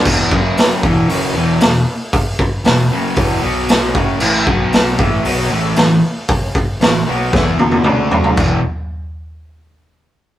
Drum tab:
CC |x---------------|----------------|x---------------|----------------|
HH |----o---o---o---|o---o---o---o---|----o---o---o---|o---o-----------|
SD |----o-------o---|----o-------o---|----o-------o---|----o---o-------|
T1 |----------------|----------------|----------------|----------oo----|
T2 |----------------|----------------|----------------|------------o---|
FT |----------------|----------------|----------------|--------------oo|
BD |o-o---o---------|o-o-----o-----o-|--o---o---------|o-o-----o-------|

CC |x---------------|
HH |----------------|
SD |----------------|
T1 |----------------|
T2 |----------------|
FT |----------------|
BD |o---------------|